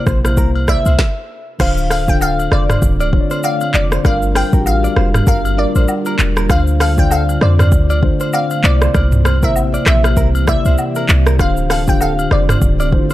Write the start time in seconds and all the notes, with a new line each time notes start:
Already playing: C3 A#3 E4 C5
0.07 A#1 C5, kick, cross-stick, shaker
0.23 C3 A#3 E4 C5, cross-stick, high agogo, shaker
0.37 C2 A#4, kick, shaker
0.55 high agogo
0.68 D5 E5, kick, cross-stick, shaker
0.86 C2 C5, high agogo, shaker
0.99 kick, snare
1.59 D1 D3 A3 C4 D4 F4 C5 F5, kick, cross-stick, crash, high agogo, shaker
1.77 shaker
1.91 A4 F5, cross-stick, open hi-hat, high agogo, shaker
2.07 D3 D4 F4 A4 G5, kick, shaker
2.21 A4 F5, low woodblock, shaker
2.39 high agogo, shaker
2.52 F1 C5 D5, cross-stick
2.70 C5, cross-stick, mid tom, high agogo, shaker
2.82 D1, kick, shaker
3.00 D5, high agogo, shaker
3.12 D3 D4 F4 C#5, kick
3.21 D5
3.30 C5, high agogo, shaker
3.43 D5 F5, low woodblock, shaker
3.61 high agogo, shaker
3.74 F1 D5, clap, shaker
3.92 C5, cross-stick, shaker
4.04 G1 G3 A#3 D4 F4 A#4 D5 F5, kick, cross-stick, high agogo, shaker
4.22 shaker
4.35 C5 G5, cross-stick, open hi-hat, high agogo, shaker
4.52 A1 G3 D4 F4 F#4 A#4, kick, shaker
4.61 G4
4.66 F5, low woodblock, shaker
4.84 D5, high agogo, shaker
4.96 F1 C5, cross-stick
5.14 cross-stick, mid tom, high agogo, shaker
5.27 G1 A#4 F5, kick, shaker
5.45 high agogo, shaker
5.57 G3 D4 F4 A#4 D5
5.75 A1 C5, high agogo, shaker
5.88 low woodblock, shaker
6.06 A#4, high agogo, shaker
6.19 E1, clap, shaker
6.37 A#4, cross-stick, shaker
6.48 D2 D3 A3 C4 D4 F4 C5 F5, kick, cross-stick, high agogo, shaker
6.67 shaker
6.80 A4 F5, cross-stick, open hi-hat, high agogo, shaker
6.97 D3 D4 F4 D5 G5, kick, shaker
7.11 A4 F5, low woodblock, shaker
7.29 high agogo, shaker
7.41 F2 C5 D5, cross-stick
7.59 C5, cross-stick, mid tom, high agogo, shaker
7.72 D2, kick, shaker
7.90 D5, high agogo, shaker
8.01 D3 D4 F4 C5, kick
8.20 C5, high agogo, shaker
8.33 D5 F5, low woodblock, shaker
8.50 high agogo, shaker
8.63 C2 C3 E3 A#3 E4 G4 C5 D5, clap, shaker
8.82 C5, cross-stick, shaker
8.94 C2 D5, kick, cross-stick, high agogo, shaker
9.12 mid tom, shaker
9.25 C5, cross-stick, high agogo, shaker
9.42 A1 C3 A#3 E4 A#4 C5 E5, kick, shaker
9.56 low woodblock, shaker
9.74 D5, high agogo, shaker
9.86 A#1 C5 E5, cross-stick, clap, shaker
10.04 cross-stick, high agogo, shaker
10.17 C2 A#4, kick, shaker
10.35 high agogo, shaker
10.46 C3 A#3 E4 D5 E5, kick, cross-stick, shaker
10.65 C2 C5, high agogo, shaker
10.78 low woodblock, shaker
10.95 A#4, high agogo, shaker
11.09 C2, clap, shaker
11.27 A#4, cross-stick, shaker
11.38 D1 D3 A3 C4 D4 F4 C5 F5, kick, cross-stick, high agogo, shaker
11.57 shaker
11.70 A4 F5, cross-stick, open hi-hat, high agogo, shaker
11.86 D3 D4 F4 G4 G5, kick, shaker
12.01 A4 F5, low woodblock, shaker
12.19 high agogo, shaker
12.31 F1 C5 D5, cross-stick
12.49 C5, cross-stick, mid tom, high agogo, shaker
12.62 D1, kick, shaker
12.80 D5, high agogo, shaker
12.91 D3 D4 E4 C5, kick
12.99 F4
13.10 C5, high agogo, shaker